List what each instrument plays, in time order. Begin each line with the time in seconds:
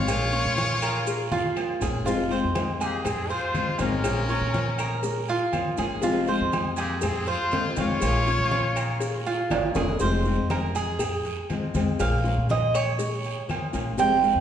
Already playing: trumpet F4, muted trumpet C#5, cuban tres F5
0.07 upright bass A#1, nylon-string guitar F3 A#3 C#4 F4, cowbell, high conga, low agogo, long guiro, claves, maracas
0.32 nylon-string guitar A#3 C#4 F4, cuban tres C#5, high conga, maracas
0.45 upright bass A#2
0.56 nylon-string guitar F3 A#3 C#4 F4, cowbell, high conga, low agogo, short guiro, maracas
0.82 cuban tres A#4, cowbell, high conga, low agogo, short guiro, claves, maracas
1.06 muted nylon-string guitar stroke, cowbell, high conga, long guiro, maracas
1.32 cuban tres F4, high conga, low agogo, maracas
1.56 nylon-string guitar F3 A#3 C#4 F4, cowbell, low agogo, short guiro, claves, maracas
1.81 upright bass A#1, nylon-string guitar A#3 C#4 F4, cuban tres G#4, cowbell, low conga, low agogo, short guiro, maracas
2.05 upright bass F1, nylon-string guitar C3 F3 G#3 C4 F4, cuban tres F4, cowbell, high conga, long guiro, maracas
2.30 nylon-string guitar F3 G#3 C4 F4, cuban tres C5, high conga, maracas
2.44 upright bass F2
2.54 nylon-string guitar F3 G#3 C4 F4, cowbell, high conga, low agogo, short guiro, claves, maracas
2.80 trumpet A#3, muted trumpet G4, cuban tres G#4, cowbell, high conga, low agogo, short guiro, maracas
3.04 trumpet C4, muted trumpet G#4, muted nylon-string guitar stroke, cowbell, high conga, low conga, low agogo, long guiro, claves, maracas
3.29 trumpet F4, cuban tres C5, muted trumpet C5, cowbell, high conga, maracas
3.54 nylon-string guitar F3 G#3 C4 F4, cowbell, high conga, low agogo, short guiro, maracas
3.79 upright bass G#1, nylon-string guitar F3 G#3 C4 F4, trumpet C#4, muted trumpet A#4, cuban tres F5, cowbell, high conga, low agogo, short guiro, maracas
4.03 upright bass A#1, nylon-string guitar F3 A#3 C#4 F4, cowbell, high conga, low agogo, long guiro, claves, maracas
4.29 nylon-string guitar A#3 C#4 F4, cuban tres C#5, high conga, maracas
4.41 upright bass A#2
4.54 nylon-string guitar F3 A#3 C#4 F4, cowbell, high conga, low agogo, short guiro, maracas
4.78 cuban tres A#4, cowbell, high conga, low agogo, short guiro, claves, maracas
5.03 muted nylon-string guitar stroke, cowbell, high conga, long guiro, maracas
5.28 cuban tres F4, high conga, low agogo, maracas
5.52 nylon-string guitar F3 A#3 C#4 F4, cowbell, high conga, low agogo, short guiro, claves, maracas
5.77 upright bass G1, nylon-string guitar A#3 C#4 F4, cuban tres G#4, cowbell, high conga, low agogo, short guiro, maracas
6.02 upright bass F1, nylon-string guitar C3 F3 G#3 C4 F4, cuban tres F4, cowbell, high conga, long guiro, maracas
6.26 nylon-string guitar F3 G#3 C4 F4, cuban tres C5, high conga, maracas
6.40 upright bass F2
6.52 nylon-string guitar F3 G#3 C4 F4, cowbell, high conga, low agogo, short guiro, claves, maracas
6.76 trumpet A#3, muted trumpet G4, cuban tres G#4, cowbell, high conga, low agogo, short guiro, maracas
7.01 trumpet C4, muted trumpet G#4, muted nylon-string guitar stroke, cowbell, high conga, low conga, low agogo, long guiro, claves, maracas
7.26 trumpet F4, cuban tres C5, muted trumpet C5, cowbell, high conga, maracas
7.51 nylon-string guitar F3 G#3 C4 F4, cowbell, high conga, low timbale, low agogo, short guiro, maracas
7.76 upright bass F1, nylon-string guitar F3 G#3 C4 F4, trumpet F4, muted trumpet C#5, cuban tres F5, cowbell, high conga, low agogo, short guiro, maracas
8.01 upright bass A#1, nylon-string guitar F3 A#3 C#4 F4, cowbell, high conga, low agogo, long guiro, claves, maracas
8.27 nylon-string guitar A#3 C#4 F4, cuban tres C#5, maracas
8.39 upright bass A#2
8.51 nylon-string guitar F3 A#3 C#4 F4, cowbell, high conga, low agogo, short guiro, maracas
8.76 cuban tres A#4, cowbell, high conga, low agogo, short guiro, claves, maracas
9.00 muted nylon-string guitar stroke, cowbell, high conga, long guiro, maracas
9.26 cuban tres F4, high conga, low agogo, maracas
9.50 upright bass G1, nylon-string guitar F3 A#3 C#4 F4, cowbell, high conga, high timbale, low agogo, short guiro, claves, maracas
9.75 upright bass F1, nylon-string guitar A#3 C#4 F4, cuban tres G#4, cowbell, high bongo, high conga, low timbale, low agogo, short guiro, maracas
9.99 upright bass F1, nylon-string guitar C3 F3 G#3 C4 F4, cuban tres C5, cowbell, high conga, long guiro, maracas
10.25 nylon-string guitar F3 G#3 C4 F4, high conga, maracas
10.38 upright bass F2
10.50 nylon-string guitar F3 G#3 C4 F4, cuban tres A#4, cowbell, high conga, low agogo, short guiro, claves, maracas
10.75 cuban tres G#4, cowbell, high conga, low agogo, short guiro, maracas
10.99 muted nylon-string guitar stroke, cowbell, high conga, low conga, low agogo, long guiro, claves, maracas
11.25 cowbell, high conga, maracas
11.49 nylon-string guitar F3 G#3 C4 F4, cowbell, high conga, low agogo, short guiro, maracas
11.74 upright bass F2, nylon-string guitar F3 G#3 C4 F4, cowbell, high conga, low agogo, short guiro, maracas
11.99 upright bass A#1, nylon-string guitar F3 A#3 C#4 F4, cuban tres F5, cowbell, high conga, low agogo, long guiro, claves, maracas
12.24 nylon-string guitar A#3 C#4 F4, high conga, maracas
12.37 upright bass A#2
12.49 nylon-string guitar F3 A#3 C#4 F4, cuban tres D#5, cowbell, high conga, low agogo, short guiro, maracas
12.74 cuban tres C#5, cowbell, high conga, low agogo, short guiro, claves, maracas
12.99 muted nylon-string guitar stroke, cowbell, high conga, long guiro, maracas
13.24 high conga, low agogo, maracas
13.48 nylon-string guitar F3 A#3 C#4 F4, cowbell, high conga, low agogo, short guiro, claves, maracas
13.73 upright bass A#1, nylon-string guitar A#3 C#4 F4, cowbell, low agogo, short guiro, maracas
13.97 upright bass F1, nylon-string guitar C3 F3 G#3 C4 F4, cuban tres G5, cowbell, high conga, long guiro, maracas
14.23 nylon-string guitar F3 G#3 C4 F4, high conga, maracas
14.35 upright bass F2